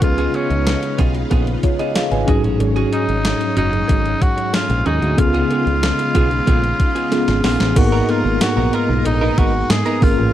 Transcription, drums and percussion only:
0.02 kick loud
0.02 closed hi-hat loud
0.02 cowbell medium
0.18 closed hi-hat medium
0.34 closed hi-hat medium
0.51 closed hi-hat soft
0.67 snare loud
0.67 closed hi-hat medium
0.67 cowbell medium
0.83 closed hi-hat medium
0.98 kick medium
0.98 closed hi-hat medium
1.15 closed hi-hat soft
1.30 kick medium
1.30 closed hi-hat medium
1.30 cowbell medium
1.47 closed hi-hat soft
1.63 kick medium
1.63 closed hi-hat medium
1.79 closed hi-hat medium
1.95 snare loud
1.95 closed hi-hat medium
1.95 cowbell medium
2.12 closed hi-hat soft
2.28 kick loud
2.28 closed hi-hat medium
2.28 cowbell medium
2.44 closed hi-hat medium
2.60 closed hi-hat loud
2.60 cowbell medium
2.76 closed hi-hat medium
2.93 closed hi-hat medium
3.09 closed hi-hat soft
3.25 snare loud
3.25 closed hi-hat loud
3.25 cowbell medium
3.41 closed hi-hat medium
3.57 closed hi-hat medium
3.73 closed hi-hat soft
3.88 kick medium
3.88 closed hi-hat medium
3.88 cowbell medium
4.06 closed hi-hat soft
4.22 kick medium
4.22 closed hi-hat medium
4.38 closed hi-hat medium
4.53 snare loud
4.53 closed hi-hat medium
4.53 cowbell medium
4.70 closed hi-hat medium
4.86 closed hi-hat medium
4.86 cowbell medium
5.02 closed hi-hat soft
5.18 kick loud
5.18 closed hi-hat loud
5.18 cowbell medium
5.34 closed hi-hat medium
5.51 closed hi-hat medium
5.51 cowbell medium
5.67 closed hi-hat soft
5.83 snare loud
5.83 closed hi-hat loud
5.83 cowbell medium
5.99 closed hi-hat medium
6.15 kick medium
6.15 closed hi-hat medium
6.31 closed hi-hat soft
6.46 kick medium
6.46 closed hi-hat medium
6.46 cowbell medium
6.64 closed hi-hat medium
6.80 kick medium
6.80 closed hi-hat medium
6.96 closed hi-hat medium
7.12 snare medium
7.12 closed hi-hat medium
7.12 cowbell medium
7.28 snare medium
7.28 closed hi-hat medium
7.44 snare medium
7.44 open hi-hat medium
7.44 cowbell medium
7.60 snare medium
7.60 closed hi-hat medium
7.76 kick loud
7.76 closed hi-hat loud
7.76 crash medium
7.76 cowbell medium
8.09 closed hi-hat medium
8.09 cowbell medium
8.41 snare loud
8.41 closed hi-hat loud
8.41 tambourine medium
8.41 cowbell medium
8.73 closed hi-hat medium
9.05 closed hi-hat medium
9.05 cowbell medium
9.38 kick medium
9.38 closed hi-hat medium
9.70 snare loud
9.70 closed hi-hat medium
9.70 tambourine medium
9.70 cowbell medium
9.86 closed hi-hat medium
10.02 kick loud
10.02 open hi-hat medium
10.02 cowbell medium

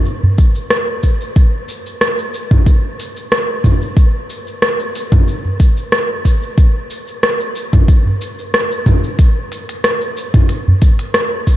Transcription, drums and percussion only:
0.05 shaker soft
0.23 udu medium
0.38 kick medium
0.38 shaker medium
0.55 shaker soft
0.70 cross-stick medium
0.70 shaker soft
1.03 kick medium
1.03 shaker medium
1.21 shaker soft
1.36 kick loud
1.36 shaker soft
1.68 shaker medium
1.86 shaker soft
2.01 cross-stick medium
2.01 shaker soft
2.19 shaker soft
2.34 shaker medium
2.51 kick loud
2.51 mid tom medium
2.51 shaker soft
2.66 kick loud
2.66 shaker soft
2.99 shaker medium
3.16 shaker soft
3.32 cross-stick medium
3.32 shaker soft
3.64 kick medium
3.64 mid tom medium
3.64 shaker medium
3.82 shaker soft
3.97 kick loud
3.97 shaker soft
4.30 shaker medium
4.47 shaker soft
4.62 cross-stick medium
4.62 shaker soft
4.80 shaker soft
4.95 shaker medium
5.12 kick loud
5.12 mid tom medium
5.12 shaker soft
5.27 shaker soft
5.45 udu medium
5.60 kick loud
5.60 shaker medium
5.77 shaker soft
5.92 cross-stick medium
5.92 shaker soft
6.25 kick medium
6.25 shaker medium
6.42 shaker soft
6.58 kick loud
6.58 shaker soft
6.90 shaker medium
7.08 shaker soft
7.23 cross-stick medium
7.23 shaker soft
7.40 shaker soft
7.55 shaker medium
7.73 kick loud
7.73 mid tom medium
7.73 shaker soft
7.88 kick loud
7.88 shaker soft
8.06 udu medium
8.21 shaker medium
8.39 shaker soft
8.54 cross-stick medium
8.54 shaker soft
8.71 shaker soft
8.86 kick medium
8.86 mid tom medium
8.86 shaker medium
9.04 shaker soft
9.19 kick loud
9.19 closed hi-hat medium
9.19 shaker soft
9.52 closed hi-hat soft
9.52 shaker medium
9.69 closed hi-hat soft
9.69 shaker soft
9.84 cross-stick medium
9.84 closed hi-hat soft
9.84 shaker soft
10.01 shaker soft
10.17 shaker medium
10.34 kick medium
10.34 closed hi-hat soft
10.34 mid tom medium
10.34 shaker soft
10.49 closed hi-hat soft
10.49 shaker soft
10.68 udu medium
10.82 kick medium
10.82 closed hi-hat soft
10.82 shaker medium
10.99 closed hi-hat soft
10.99 shaker soft
11.14 cross-stick medium
11.14 closed hi-hat soft
11.14 shaker soft
11.47 kick medium
11.47 shaker medium

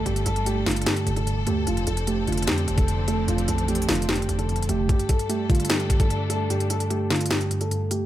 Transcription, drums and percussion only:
0.06 closed hi-hat medium
0.16 closed hi-hat medium
0.26 closed hi-hat medium
0.36 closed hi-hat medium
0.46 closed hi-hat medium
0.66 snare medium
0.66 closed hi-hat soft
0.66 open hi-hat medium
0.71 closed hi-hat medium
0.76 closed hi-hat medium
0.82 closed hi-hat medium
0.86 snare loud
0.86 closed hi-hat medium
0.96 closed hi-hat medium
1.07 closed hi-hat medium
1.17 closed hi-hat medium
1.27 closed hi-hat medium
1.47 closed hi-hat medium
1.67 closed hi-hat medium
1.77 closed hi-hat medium
1.87 closed hi-hat medium
1.97 closed hi-hat medium
2.07 closed hi-hat medium
2.27 closed hi-hat soft
2.32 closed hi-hat medium
2.38 closed hi-hat medium
2.42 closed hi-hat medium
2.47 snare loud
2.47 closed hi-hat medium
2.58 closed hi-hat medium
2.68 closed hi-hat medium
2.78 kick loud
2.78 closed hi-hat medium
2.88 closed hi-hat medium
3.08 closed hi-hat medium
3.28 closed hi-hat medium
3.38 closed hi-hat medium
3.48 closed hi-hat medium
3.58 closed hi-hat medium
3.68 closed hi-hat medium
3.75 closed hi-hat medium
3.82 closed hi-hat medium
3.89 snare loud
3.89 closed hi-hat medium
3.89 open hi-hat medium
3.95 closed hi-hat medium
4.02 closed hi-hat medium
4.09 snare loud
4.09 closed hi-hat medium
4.15 closed hi-hat medium
4.22 closed hi-hat medium
4.29 closed hi-hat medium
4.39 closed hi-hat medium
4.49 closed hi-hat soft
4.56 closed hi-hat medium
4.62 closed hi-hat medium
4.69 closed hi-hat medium
4.89 kick loud
4.89 closed hi-hat medium
4.99 closed hi-hat medium
5.09 kick medium
5.09 closed hi-hat medium
5.19 closed hi-hat medium
5.30 closed hi-hat medium
5.50 kick loud
5.50 closed hi-hat soft
5.55 closed hi-hat medium
5.60 closed hi-hat medium
5.65 closed hi-hat medium
5.70 snare loud
5.70 closed hi-hat medium
5.80 closed hi-hat soft
5.90 kick medium
5.90 closed hi-hat medium
6.00 kick loud
6.00 closed hi-hat medium
6.10 closed hi-hat medium
6.30 closed hi-hat medium
6.50 closed hi-hat medium
6.60 closed hi-hat medium
6.70 closed hi-hat medium
6.80 closed hi-hat medium
6.90 closed hi-hat medium
7.10 snare medium
7.10 closed hi-hat soft
7.16 closed hi-hat soft
7.21 closed hi-hat medium
7.26 closed hi-hat medium
7.30 snare loud
7.30 closed hi-hat medium
7.41 closed hi-hat soft
7.51 closed hi-hat medium
7.61 closed hi-hat medium
7.71 closed hi-hat medium
7.91 closed hi-hat medium

